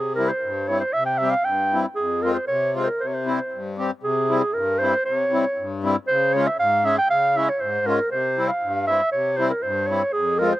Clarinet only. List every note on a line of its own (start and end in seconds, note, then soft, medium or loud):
0.00 0.14 G#4 medium
0.15 0.30 A#4 medium
0.29 0.69 C5 medium
0.68 0.80 C#5 medium
0.80 0.95 C5 medium
0.93 1.05 E5 loud
1.06 1.19 G5 medium
1.18 1.32 E5 loud
1.30 1.46 F5 medium
1.44 1.84 G5 loud
1.96 2.23 G#4 medium
2.22 2.33 A#4 medium
2.34 2.47 C5 medium
2.47 2.72 C#5 medium
2.84 3.02 A#4 medium
2.84 2.87 C5 medium
3.00 3.09 C5 medium
3.07 3.16 C#5 medium
3.14 3.77 C5 medium
4.03 4.55 G#4 medium
4.53 4.81 A#4 medium
4.79 5.04 C5 loud
5.05 5.16 C5 medium
5.16 5.78 C#5 medium
6.07 6.35 C5 loud
6.33 6.48 C#5 medium
6.47 6.59 E5 medium
6.59 6.86 F5 loud
6.85 6.97 E5 medium
6.98 7.09 G5 loud
7.10 7.38 F5 loud
7.37 7.51 E5 loud
7.49 7.62 C#5 medium
7.61 7.88 C5 medium
7.86 8.10 A#4 loud
8.11 8.50 C5 medium
8.48 8.87 F5 medium
8.87 9.11 E5 medium
9.12 9.38 C#5 medium
9.37 9.49 C5 medium
9.50 9.64 A#4 medium
9.63 9.88 C5 medium
9.87 10.14 C#5 medium
10.12 10.40 G#4 medium
10.39 10.51 A#4 medium
10.52 10.60 C5 medium